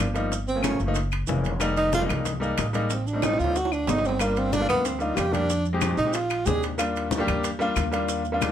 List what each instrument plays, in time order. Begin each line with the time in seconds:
0.00 upright bass G1, high bongo, low bongo, high conga, high timbale
0.14 grand piano F3 G3 A#3 D#4, high timbale, maracas
0.32 high bongo, high conga, maracas
0.48 tenor saxophone C4, high bongo, high conga, maracas
0.55 grand piano F3 A3 A#3 C#4
0.63 tenor saxophone C#4, high bongo, high conga, high timbale, claves, maracas
0.80 upright bass F#1, high conga, maracas
0.86 grand piano F3 A3 A#3 D#4
0.95 high bongo, high conga, high timbale, maracas
1.12 high bongo, high conga, high timbale, claves, maracas
1.27 upright bass F1, grand piano E3 G#3 A#3 C#4, high bongo, low bongo, high conga, maracas
1.44 high bongo, high conga, high timbale, maracas
1.60 grand piano G3 G#3 A#3 D#4, high bongo, high conga, high timbale, claves, maracas
1.77 tenor saxophone D#4, high timbale, maracas
1.93 tenor saxophone F4, high bongo, high conga, maracas
1.99 grand piano G3 G#3 A#3 D#4
2.09 upright bass C2, low conga, high timbale, claves, maracas
2.25 high bongo, high conga, low conga, high timbale, maracas
2.40 grand piano G3 G#3 A#3 D#4, high conga, maracas
2.58 upright bass A1, high bongo, low bongo, high timbale, claves, maracas
2.73 grand piano G3 G#3 A#3 D#4, high conga, high timbale, maracas
2.90 tenor saxophone C4, high bongo, high conga, maracas
3.07 tenor saxophone D4, high bongo, high conga, maracas
3.13 grand piano G3 A3 C4 D#4
3.22 tenor saxophone D#4, high bongo, high conga, high timbale, claves, maracas
3.34 high timbale
3.39 upright bass D2, tenor saxophone F4, high conga, maracas
3.44 grand piano G3 A3 C4 D#4, high timbale
3.56 tenor saxophone F#4, high bongo, high conga, maracas
3.65 high timbale
3.72 tenor saxophone D4, high bongo, high conga, claves, maracas
3.86 upright bass G1, grand piano F#3 A3 C4 D#4, tenor saxophone D#4, high bongo, low bongo, high conga, low timbale, maracas
3.98 low timbale
4.05 tenor saxophone C4, high bongo, maracas
4.09 low timbale
4.19 grand piano G3 A#3 D4 F4, tenor saxophone A#3, high bongo, high conga, high timbale, claves, maracas
4.36 tenor saxophone C4, high conga, high timbale, maracas
4.53 tenor saxophone D4, high bongo, high conga, maracas
4.60 grand piano G3 A#3 D4 F4
4.69 upright bass D2, tenor saxophone B3, low conga, high timbale, claves, maracas
4.85 tenor saxophone C4, high bongo, high conga, high timbale, maracas
4.99 grand piano G3 A#3 D4 F4, tenor saxophone D#4, high conga, maracas
5.16 upright bass F2, tenor saxophone G4, high bongo, low bongo, high conga, high timbale, low timbale, claves, maracas
5.31 grand piano G3 A#3 D4 G4, tenor saxophone D4, high conga, high timbale, maracas
5.50 high bongo, high conga, maracas
5.65 high bongo, maracas
5.73 grand piano G#3 C4 D#4 G4
5.81 high bongo, high conga, high timbale, claves, maracas
5.98 upright bass A#1, tenor saxophone D#4, high conga, maracas
6.05 grand piano G#3 C4 D#4 G4
6.13 tenor saxophone F4, high bongo, high conga, high timbale, maracas
6.30 high bongo, high conga, high timbale, claves, maracas
6.45 upright bass D#2, grand piano G#3 C4 D4 G4, tenor saxophone G#4, high bongo, low bongo, high conga, low timbale, maracas
6.63 high bongo, high timbale, maracas
6.78 grand piano G3 A#3 D4 F4, high bongo, high conga, high timbale, claves, maracas
6.95 high conga, high timbale, maracas
7.11 high bongo, high conga, maracas
7.18 grand piano G3 A#3 D4 G4
7.27 upright bass D#2, low conga, high timbale, claves, maracas
7.44 high bongo, high conga, high timbale, maracas
7.59 grand piano G3 A#3 D4 F4, high conga, maracas
7.76 upright bass D#2, high bongo, low bongo, high timbale, claves, maracas
7.92 grand piano G3 A#3 D4 F4, high timbale, maracas
8.09 high bongo, high conga, maracas
8.25 high bongo, high conga, maracas
8.32 grand piano G3 A#3 D4 F4
8.41 high bongo, high conga, high timbale, claves, maracas